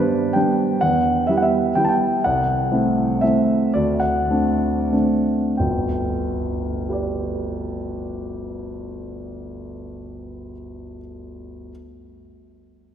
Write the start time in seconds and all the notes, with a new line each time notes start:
Already playing: G2 G3 B3 D4 B4 C5 D5
0.33 G3 B3 D4 G5
0.81 E2 F#5
1.27 G3 B3 E4 E5
1.38 F#5
1.43 E5
1.75 G3 B3 E4 G5
1.85 A5
1.89 G5
2.24 C2 F#5
2.72 A3 C4 E4
3.21 A3 C4 E4 E5
3.74 D2 D5
4.00 F#5
4.30 A3 C4 D4
4.92 A3 C4 D4
5.57 G1 D2 G5
6.89 G4 B4 D5